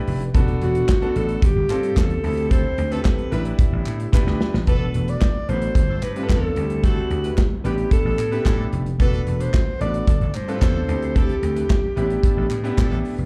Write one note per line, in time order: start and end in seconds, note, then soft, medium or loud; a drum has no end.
0.00 1.39 D3 medium
0.00 0.34 A3 medium
0.00 0.34 B3 medium
0.00 0.20 D4 medium
0.00 0.20 E4 medium
0.00 0.20 G4 medium
0.00 0.31 G4 medium
0.00 0.21 B4 loud
0.07 0.28 F1 medium
0.07 open hi-hat medium
0.21 closed hi-hat soft
0.34 0.55 E1 loud
0.34 2.22 A3 medium
0.34 0.84 B3 medium
0.34 0.84 D4 medium
0.34 1.42 E4 medium
0.34 0.85 F#4 medium
0.34 1.42 F#4 medium
0.34 0.85 A4 loud
0.34 kick loud
0.34 closed hi-hat medium
0.48 closed hi-hat soft
0.62 0.82 E1 loud
0.62 1.18 F#4 medium
0.62 closed hi-hat medium
0.75 closed hi-hat medium
0.89 kick loud
0.89 snare medium
0.89 clap medium
1.02 1.43 B3 medium
1.02 1.43 D4 medium
1.02 1.43 F#4 medium
1.02 1.43 A4 loud
1.02 closed hi-hat soft
1.16 1.36 A1 medium
1.16 1.45 A4 loud
1.16 closed hi-hat medium
1.29 closed hi-hat medium
1.42 1.52 G1 loud
1.42 2.24 C3 medium
1.42 2.23 F4 medium
1.42 3.31 G4 medium
1.42 1.99 G4 loud
1.42 kick loud
1.42 closed hi-hat loud
1.56 1.66 G1 loud
1.69 1.90 G2 loud
1.69 2.10 C4 medium
1.69 2.10 D4 medium
1.69 2.10 F4 medium
1.69 2.10 A4 loud
1.69 clap medium
1.69 closed hi-hat medium
1.83 closed hi-hat medium
1.97 2.17 E2 medium
1.97 2.53 A4 loud
1.97 kick loud
1.97 snare loud
1.97 clap medium
1.97 clap loud
2.10 closed hi-hat soft
2.23 2.64 D2 loud
2.23 4.65 D3 medium
2.23 2.78 C4 medium
2.23 3.31 C4 medium
2.23 2.78 E4 medium
2.23 3.31 E4 medium
2.23 2.78 G4 medium
2.23 2.78 A4 medium
2.23 open hi-hat medium
2.38 closed hi-hat soft
2.51 2.62 C4 medium
2.51 2.62 E4 medium
2.51 2.62 A4 loud
2.51 2.94 C5 loud
2.51 kick loud
2.51 closed hi-hat medium
2.78 2.98 D2 loud
2.78 closed hi-hat medium
2.91 3.31 C4 medium
2.91 3.00 C4 loud
2.91 3.30 E4 medium
2.91 3.00 E4 loud
2.91 3.31 G4 medium
2.91 3.00 A4 loud
2.91 3.32 A4 medium
2.91 3.34 B4 loud
2.91 closed hi-hat medium
3.05 kick loud
3.05 snare loud
3.05 clap medium
3.18 closed hi-hat soft
3.32 3.52 A1 loud
3.32 4.66 A3 medium
3.32 4.66 B3 medium
3.32 3.97 D4 medium
3.32 3.97 E4 medium
3.32 3.49 E4 medium
3.32 4.41 E4 medium
3.32 3.49 G4 medium
3.32 3.97 G4 medium
3.32 4.66 G4 medium
3.32 3.49 B4 loud
3.32 3.97 B4 medium
3.32 closed hi-hat medium
3.45 closed hi-hat medium
3.59 kick loud
3.59 closed hi-hat loud
3.73 3.83 A1 medium
3.85 4.06 A2 loud
3.85 clap medium
3.85 closed hi-hat medium
4.00 closed hi-hat medium
4.12 4.23 A2 loud
4.12 4.53 D4 medium
4.12 4.53 E4 medium
4.12 4.53 G4 medium
4.12 4.53 B4 loud
4.12 kick loud
4.12 snare medium
4.12 clap loud
4.27 4.37 D2 medium
4.27 snare medium
4.41 snare loud
4.54 4.64 A1 medium
4.54 snare medium
4.67 4.87 E1 loud
4.67 5.75 D3 medium
4.67 5.75 F#3 medium
4.67 6.55 A3 medium
4.67 5.27 B3 medium
4.67 4.89 D4 loud
4.67 5.27 D4 medium
4.67 5.75 E4 medium
4.67 4.89 F#4 loud
4.67 5.27 F#4 medium
4.67 4.89 A4 loud
4.67 5.27 A4 medium
4.67 5.11 B4 loud
4.67 kick loud
4.67 closed hi-hat medium
4.94 5.14 E1 medium
4.94 closed hi-hat medium
5.08 5.19 D4 medium
5.08 5.19 F#4 medium
5.08 5.19 B4 medium
5.08 5.51 D5 loud
5.08 closed hi-hat medium
5.21 kick loud
5.21 snare loud
5.21 clap medium
5.48 5.68 A1 medium
5.48 5.75 B3 medium
5.48 5.75 D4 medium
5.48 5.60 D4 medium
5.48 5.75 F#4 medium
5.48 5.60 F#4 medium
5.48 5.76 A4 medium
5.48 5.60 B4 medium
5.48 6.05 C5 loud
5.48 closed hi-hat medium
5.62 closed hi-hat medium
5.75 5.85 G1 loud
5.75 6.56 C3 medium
5.75 7.63 G3 medium
5.75 5.86 D4 medium
5.75 5.86 F4 medium
5.75 6.56 F4 medium
5.75 5.86 A4 medium
5.75 kick loud
5.75 closed hi-hat loud
5.89 5.99 G1 loud
5.89 6.00 D4 medium
5.89 6.00 F4 medium
5.89 6.00 A4 medium
6.02 6.23 G2 loud
6.02 6.32 B4 loud
6.02 clap medium
6.02 closed hi-hat medium
6.16 6.55 C4 medium
6.16 6.56 D4 medium
6.16 6.27 E4 medium
6.16 6.57 F4 medium
6.16 6.27 G4 medium
6.16 6.23 G4 medium
6.16 6.27 B4 loud
6.16 closed hi-hat soft
6.23 6.60 A4 medium
6.29 6.49 E2 medium
6.29 6.51 D4 loud
6.29 6.51 F4 loud
6.29 6.51 A4 loud
6.29 6.86 A4 medium
6.29 kick loud
6.29 snare loud
6.29 clap medium
6.29 clap loud
6.56 6.96 D2 loud
6.56 8.97 D3 medium
6.56 7.43 G3 medium
6.56 7.43 A3 medium
6.56 7.43 C4 medium
6.56 7.64 C4 medium
6.56 7.64 E4 medium
6.56 7.43 E4 medium
6.56 closed hi-hat medium
6.70 closed hi-hat soft
6.83 7.05 C4 loud
6.83 7.05 E4 loud
6.83 7.38 F#4 medium
6.83 7.05 A4 loud
6.83 kick loud
6.83 closed hi-hat medium
7.10 7.30 D2 medium
7.10 closed hi-hat medium
7.24 7.35 E4 medium
7.24 7.35 G4 medium
7.24 7.35 B4 medium
7.24 closed hi-hat medium
7.38 kick loud
7.38 snare loud
7.38 clap medium
7.64 7.84 A1 loud
7.64 10.86 A3 medium
7.64 8.18 B3 medium
7.64 8.99 B3 medium
7.64 8.18 D4 medium
7.64 8.19 E4 medium
7.64 7.75 E4 medium
7.64 7.75 G4 medium
7.64 8.19 G4 medium
7.64 8.98 G4 medium
7.64 7.90 G4 medium
7.64 7.75 B4 medium
7.64 closed hi-hat medium
7.78 closed hi-hat medium
7.91 8.02 D4 medium
7.91 8.02 E4 medium
7.91 8.02 A4 medium
7.91 8.69 A4 loud
7.91 kick loud
7.91 closed hi-hat loud
8.05 8.15 A1 loud
8.05 8.16 D4 medium
8.05 8.16 E4 medium
8.05 8.16 A4 medium
8.18 8.38 A2 medium
8.18 clap medium
8.18 closed hi-hat medium
8.31 8.82 B3 medium
8.31 8.82 D4 medium
8.31 8.82 E4 medium
8.31 8.43 E4 medium
8.31 8.43 G4 medium
8.31 8.82 G4 medium
8.31 8.43 B4 loud
8.31 closed hi-hat soft
8.46 8.65 A2 medium
8.46 8.67 D4 loud
8.46 8.67 E4 loud
8.46 8.67 A4 loud
8.46 kick loud
8.46 snare loud
8.46 clap medium
8.46 clap loud
8.73 8.93 F1 medium
8.73 closed hi-hat medium
8.86 closed hi-hat soft
8.99 9.20 E1 loud
8.99 10.07 E3 medium
8.99 9.59 B3 medium
8.99 9.59 D4 medium
8.99 9.21 D4 loud
8.99 10.07 D4 medium
8.99 9.59 F#4 medium
8.99 9.21 F#4 loud
8.99 10.07 F#4 medium
8.99 9.60 A4 medium
8.99 9.21 A4 loud
8.99 9.43 B4 loud
8.99 kick loud
8.99 closed hi-hat medium
9.13 closed hi-hat soft
9.27 9.47 E1 medium
9.27 closed hi-hat medium
9.40 9.51 D4 medium
9.40 9.51 F#4 medium
9.40 9.51 B4 medium
9.40 9.81 C5 medium
9.40 closed hi-hat medium
9.54 kick loud
9.54 snare medium
9.54 clap medium
9.80 10.01 A1 medium
9.80 10.08 B3 medium
9.80 10.08 D4 medium
9.80 9.91 D4 medium
9.80 9.91 F#4 medium
9.80 10.08 F#4 medium
9.80 10.08 A4 medium
9.80 9.91 B4 medium
9.80 10.28 D5 loud
9.80 closed hi-hat medium
9.94 closed hi-hat medium
10.07 10.18 G1 loud
10.07 10.88 F3 medium
10.07 11.95 C4 medium
10.07 10.18 D4 medium
10.07 10.18 F4 medium
10.07 10.88 G4 medium
10.07 10.18 A4 medium
10.07 kick loud
10.07 closed hi-hat loud
10.21 10.31 G1 medium
10.21 10.32 D4 medium
10.21 10.32 F4 medium
10.21 10.32 A4 medium
10.21 closed hi-hat soft
10.28 10.37 D5 medium
10.34 10.55 G2 loud
10.34 11.18 C5 loud
10.34 clap medium
10.34 closed hi-hat medium
10.47 10.87 C4 medium
10.47 10.89 D4 medium
10.47 10.59 E4 medium
10.47 10.89 F4 medium
10.47 10.59 G4 medium
10.47 10.87 A4 medium
10.47 10.59 B4 loud
10.47 closed hi-hat medium
10.61 10.82 E2 medium
10.61 10.83 D4 loud
10.61 10.83 F4 loud
10.61 10.83 A4 loud
10.61 kick loud
10.61 snare loud
10.61 clap medium
10.61 clap loud
10.88 11.28 D2 loud
10.88 11.96 E3 medium
10.88 11.75 C4 medium
10.88 11.96 D4 medium
10.88 11.75 E4 medium
10.88 11.75 G4 medium
10.88 13.26 G4 medium
10.88 11.75 A4 medium
10.88 closed hi-hat medium
11.02 closed hi-hat soft
11.15 11.37 C4 loud
11.15 11.37 E4 loud
11.15 12.78 G4 medium
11.15 11.37 A4 loud
11.15 kick loud
11.15 closed hi-hat medium
11.29 closed hi-hat soft
11.43 11.63 D2 medium
11.43 closed hi-hat medium
11.55 11.67 E4 medium
11.55 11.67 G4 medium
11.55 11.67 B4 medium
11.55 closed hi-hat medium
11.70 kick loud
11.70 snare loud
11.70 clap medium
11.96 12.17 A1 medium
11.96 13.26 D3 medium
11.96 13.26 A3 medium
11.96 12.51 B3 medium
11.96 13.26 B3 medium
11.96 12.03 C#4 medium
11.96 12.07 E4 medium
11.96 12.51 E4 medium
11.96 12.07 G4 medium
11.96 12.51 G4 loud
11.96 12.07 B4 medium
11.96 closed hi-hat medium
12.03 12.54 D4 medium
12.10 closed hi-hat medium
12.23 12.35 D4 medium
12.23 12.35 E4 medium
12.23 12.35 A4 medium
12.23 kick loud
12.23 closed hi-hat loud
12.37 12.47 A1 medium
12.37 12.48 D4 medium
12.37 12.48 E4 medium
12.37 12.48 A4 medium
12.50 12.71 A2 loud
12.50 clap medium
12.50 closed hi-hat medium
12.64 13.14 B3 loud
12.64 13.14 D4 medium
12.64 13.14 E4 medium
12.64 12.75 E4 medium
12.64 13.14 G4 loud
12.64 12.75 G4 medium
12.64 12.75 B4 loud
12.64 closed hi-hat soft
12.78 12.88 A2 loud
12.78 12.99 D4 loud
12.78 13.00 E4 loud
12.78 13.00 A4 loud
12.78 kick loud
12.78 snare loud
12.78 clap medium
12.78 clap loud
12.91 13.01 A1 medium
12.91 closed hi-hat soft
13.05 open hi-hat medium
13.18 13.26 F1 medium
13.18 closed hi-hat soft